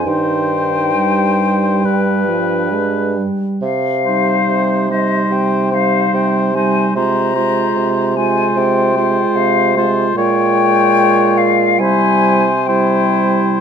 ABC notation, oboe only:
X:1
M:4/4
L:1/8
Q:1/4=72
K:Cm
V:1 name="Oboe"
c4 =B3 z | z c2 c2 c2 c | c c2 c2 c2 c | [K:Cphr] d4 c2 c2 |]